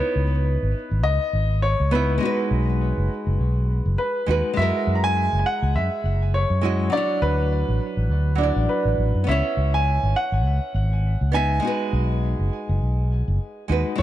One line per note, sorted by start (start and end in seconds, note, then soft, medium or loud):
0.00 1.88 B3 medium
0.00 1.89 D#4 medium
0.00 1.90 E4 medium
0.00 1.07 B4 medium
0.00 1.91 C#5 loud
0.15 0.56 C#2 medium
0.62 0.72 G#1 medium
0.91 1.03 G#1 medium
1.03 1.17 C#2 medium
1.03 1.59 D#5 loud
1.33 1.74 G#1 medium
1.62 1.90 C#5 loud
1.80 2.17 C#2 medium
1.91 2.17 B3 medium
1.91 2.19 D#4 medium
1.91 2.19 E4 medium
1.91 3.65 B4 medium
1.91 2.20 E5 loud
2.18 4.23 G#3 medium
2.18 4.24 D#4 medium
2.23 4.25 F#4 medium
2.23 4.27 B4 loud
2.51 2.91 B1 medium
2.97 3.07 F#1 medium
3.26 3.36 F#1 medium
3.39 3.80 B1 medium
3.85 3.95 F#1 medium
3.98 4.53 B4 medium
4.26 4.41 D#2 loud
4.26 4.52 G#3 medium
4.26 4.54 D#4 medium
4.26 4.55 F#4 medium
4.31 4.56 B4 medium
4.53 4.70 F#2 medium
4.53 6.58 G#3 medium
4.53 6.60 E4 medium
4.53 4.93 E5 loud
4.59 6.61 F#4 medium
4.59 6.62 A#4 loud
4.87 5.27 F#2 medium
4.95 5.03 A#5 medium
5.04 5.38 G#5 loud
5.33 5.42 F#1 medium
5.39 5.45 G#5 medium
5.46 5.73 F#5 loud
5.62 5.76 C#2 medium
5.74 5.88 F#2 medium
5.74 6.30 E5 medium
6.04 6.44 F#1 loud
6.34 6.95 C#5 medium
6.50 6.88 F#2 medium
6.61 6.89 G#3 medium
6.61 6.89 E4 medium
6.61 6.90 F#4 medium
6.61 6.91 D#5 medium
6.90 8.34 F#3 medium
6.90 8.37 D4 medium
6.90 7.20 D5 loud
6.95 8.38 E4 medium
6.95 8.39 C#5 medium
7.22 7.62 D2 medium
7.22 8.65 B4 loud
7.68 7.78 A1 medium
7.97 8.07 A1 medium
8.09 8.50 D2 medium
8.35 9.23 F#3 medium
8.35 9.24 D4 medium
8.41 9.25 E4 medium
8.41 9.27 D5 medium
8.56 8.66 A1 medium
8.69 9.30 B4 medium
8.85 8.95 A1 medium
8.98 9.11 A1 loud
9.14 9.25 F#2 loud
9.24 9.41 C#2 loud
9.24 11.29 B3 medium
9.24 11.30 C#4 medium
9.28 11.31 E4 medium
9.28 11.32 C#5 loud
9.28 9.76 E5 loud
9.57 9.97 C#2 medium
9.74 10.17 G#5 loud
10.03 10.13 G#1 medium
10.16 11.37 F#5 loud
10.32 10.44 G#1 loud
10.44 10.58 C#2 medium
10.74 11.15 G#1 medium
11.21 11.58 C#2 medium
11.32 11.59 B3 medium
11.32 11.60 D#4 medium
11.32 13.06 G#5 loud
11.36 11.61 E5 loud
11.60 13.64 G#3 medium
11.60 13.66 D#4 medium
11.65 13.67 F#4 medium
11.65 13.68 B4 medium
11.93 12.33 B1 medium
12.39 12.48 F#1 medium
12.69 12.78 F#1 medium
12.82 13.21 B1 medium
13.28 13.37 F#1 medium
13.68 13.82 D#2 medium
13.68 13.94 G#3 medium
13.68 13.96 D#4 medium
13.68 13.96 F#4 medium
13.68 13.97 B4 medium
13.96 14.02 F#2 medium
13.96 14.02 G#3 loud
13.96 14.02 E4 medium
13.96 14.02 C#5 loud